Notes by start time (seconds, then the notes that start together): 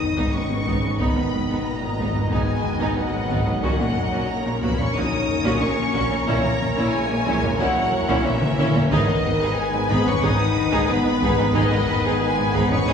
Already playing: G#1 B2 D#3 G#3 D#4 B4 D#5 D#6, impact
0.01 taiko low
0.17 G#2 B3 D#4, taiko
0.33 G#1 G#2 B3 C#4 C#6
0.50 G#2 G#3 B3
0.66 G#1 G#2 B3 D#4, taiko
0.82 G#2 B3
0.99 G#1 G#2 B3 D#4 B5, taiko
1.15 G#2 B3, taiko rim
1.32 G#1 G#2 G#3 B3, taiko low
1.49 G#2 B3 D#4
1.65 A#2 A#5
1.81 G#2 G#3 B3
1.98 G#1 G#2 B3 D#4, taiko
2.15 G#2 B3, taiko low
2.30 G#1 G#2 G#3 B3 D#4 G#5, taiko
2.64 taiko low
2.80 G#2 B3 D#4, taiko
2.97 G#1 G#2 F#3 B3 F#5
3.13 G#2 G#3 B3
3.29 G#1 G#2 B3 D#4, taiko
3.46 G#2 B3, taiko rim
3.62 A#1 A#2 C#3 F#3 A#3 C#4 F#4 A#4 C#5 F#5, taiko
3.79 A#2 C#4
3.95 A#1 A#2 A#3 C#4, taiko low
4.12 A#2 C#4 F#4
4.29 A#3 C#5 A#5
4.45 A#2 A#3 C#4, taiko rim
4.62 A#1 A#2 B3 C#4 F#4 B5, taiko
4.78 A#2 C#4 C#6, taiko low
4.95 A#1 A#2 C#4 D#4 F#4 D#6, taiko
5.28 taiko low
5.44 A#2 C#4 F#4, taiko
5.60 A#1 A#2 C#4 C#6
5.77 A#2 A#3 C#4
5.93 A#1 A#2 C#4 F#4, taiko
6.10 A#2 C#4
6.27 A#1 A#2 E3 A#3 C#4 E4 A#5, taiko
6.43 A#2 C#4
6.60 A#1 A#2 A#3 C#4, taiko low
6.76 A#2 C#4 E4
6.93 G#3 G#5
7.09 A#2 A#3 C#4
7.25 A#1 A#2 C#4 E4, taiko
7.42 A#2 C#4, taiko low
7.59 A#1 A#2 F#3 C#4 E4 F#5, taiko
7.76 taiko rim
7.92 taiko low
8.08 A#2 C#4 E4, taiko
8.25 A#1 A#2 E3 C#4 E5, taiko high
8.41 A#2 A#3 C#4, taiko mid
8.57 A#1 A#2 C#4 E4, taiko mid
8.74 A#2 C#4, taiko low
8.91 G#1 G#2 D#3 B3 D#4 G#4 B4 D#5, taiko
9.07 G#2 D#4
9.24 G#1 G#2 B3 D#4, taiko low
9.40 G#2 D#4 G#4, taiko rim
9.56 G#3 G#5
9.73 G#2 B3 D#4
9.88 G#1 G#2 B3 D#4 G#4 B5, taiko
10.06 G#2 C#4 D#4 C#6, taiko low
10.22 G#1 G#2 D#4 G#4 D#6, taiko
10.56 taiko low
10.72 G#2 D#4 G#4, taiko
10.88 G#1 G#2 B3 D#4 B5
11.05 G#2 B3 D#4
11.22 G#1 G#2 D#4 G#4, taiko
11.38 G#2 D#4, taiko rim
11.54 G#1 G#2 D#3 D#4 G#4 D#5, taiko
11.71 G#2 D#4, taiko rim
11.87 G#1 G#2 B3 D#4, taiko low
12.04 G#2 D#4 G#4
12.20 G#3 G#5
12.36 G#2 B3 D#4
12.53 G#1 G#2 B3 D#4 G#4 B5, taiko
12.70 G#2 C#4 D#4 C#6, taiko low
12.87 G#1 G#2 D#4 G#4 D#6, taiko